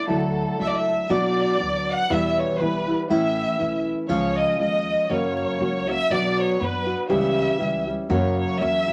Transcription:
0.07 D2 D3 F#3 A3 D4 E4 A4
0.58 C#2 F#3 A3 D4 E4 E5
0.67 D5
0.76 E5
1.09 B1 B2 F#3 B3 D4 F#4 D5
1.59 D2 F#3 B3 D4 F#4
1.88 F#5
2.09 E2 B2 E3 G3 B3 E4 E5
2.36 C#5
2.59 B1 E3 G3 B3 E4 B4
2.87 E3 G3 B3 E4
3.09 A1 A2 E3 A3 C#4 E4 E5
3.58 B1 E3 A3 C#4 E4
4.09 C#2 C#3 F3 G#3 C#4 F4 C#5
4.35 D#5
4.59 D#2 F3 G#3 C#4 F4 D#5
5.09 F#2 C#3 F#3 A#3 C#4 F#4 C#5
5.60 C#2 F#3 A#3 C#4 F#4
5.88 F#3 A#3 C#4 F#4 E5
6.10 B1 B2 F#3 B3 D4 F#4 D5
6.39 C#5
6.60 F#2 F#3 B3 D4 F#4 B4
6.86 B3 D4 F#4
7.09 C#2 C#3 E3 G3 C#4 G4 E5
7.58 C#2 E3 G3 C#4 G4
7.87 G3 C#4 G4
8.09 F#2 C#3 F#3 A#3 C#4 F#4 C#5
8.39 C#5
8.60 E2 F#3 A#3 C#4 F#4 E5
8.87 C#2 F#3 A#3 C#4 F#4

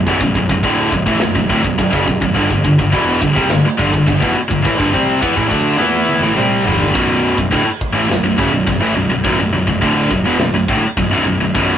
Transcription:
0.06 B0 B1 F#2, kick, china
0.21 B0 B1 F#2, kick
0.35 B0 B1 F#2, kick
0.49 B0 B1 F#2, kick
0.63 D1 D2 A2 D3, kick, china
0.92 B0 B1 F#2, kick
1.06 A1 A2 E3, kick
1.20 B0 B1 F#2, snare, china
1.35 B0 B1 F#2, kick
1.49 D1 D2 A2, kick
1.63 B0 B1 F#2, kick
1.78 B0 B1 F#2, kick, china
1.91 F#1 F#2 C#3, kick
2.05 B0 B1 F#2, kick
2.21 B0 B1 F#2, kick
2.35 G1 G2 D3, kick, china
2.50 G1 G2 D3, kick
2.64 G1 G2 D3, kick
2.79 G1 G2 D3, kick
2.92 E1 E2 B2 E3, kick, china
3.21 G1 G2 D3, kick
3.35 C2 C3 G3, kick
3.49 G1 G2 D3, snare, china
3.63 muted picked electric bass stroke, muted distorted electric guitar stroke, muted overdriven electric guitar stroke
3.78 G1 G2 D3, kick
3.92 G1 G2 D3, kick
4.06 G1 G2 D3, kick, china
4.20 E1 E2 B2, kick
4.36 muted distorted electric guitar stroke, muted picked electric bass stroke, muted overdriven electric guitar stroke
4.48 G1 G2 D3, kick
4.62 A1 A2 E3, kick, china
4.77 G1 G2 D3, kick
4.93 C2 C3 G3 C4, kick
5.20 E2 E3 B3, kick, china
5.34 A1 A2 E3, kick
5.48 D2 D3 A3 D4, kick
5.52 D3
5.77 E2 E3 B3 E4, snare
6.09 high tom
6.21 A1 A2 E3, high tom
6.35 C2 C3 G3 C4, mid tom
6.65 G1 G2 D3 G3, floor tom
6.81 floor tom
6.93 B0 B1 F#2 B2, kick, crash
7.36 B0 B1 F#2, kick
7.51 D1 D2 A2, kick, crash
7.65 muted picked electric bass stroke, muted distorted electric guitar stroke, muted overdriven electric guitar stroke
7.81 kick
7.93 A1 A2 E3
8.07 B0 B1 F#2, crash
8.11 snare
8.22 B0 B1 F#2
8.38 F#1 F#2 C#3, kick
8.51 B0 B1 F#2
8.66 B0 B1 F#2, kick, crash
8.79 A1 A2 E3
8.94 B0 B1 F#2
9.09 B0 B1 F#2
9.24 B0 B1 F#2, kick, crash
9.36 B0 B1 F#2
9.50 B0 B1 F#2
9.67 B0 B1 F#2, kick
9.81 D1 D2 A2 D3, kick, crash
10.11 B0 B1 F#2, kick
10.22 E1 E2 B2
10.37 B0 B1, snare, crash
10.41 F#2
10.51 B0 B1 F#2
10.68 D1 D2 A2, kick
10.80 muted picked electric bass stroke, muted distorted electric guitar stroke, muted overdriven electric guitar stroke
10.97 B0 B1 F#2, kick, crash
11.10 B0 B1 F#2
11.23 B0 B1 F#2
11.40 B0 B1 F#2
11.55 B0 B1 F#2 B2, kick, crash

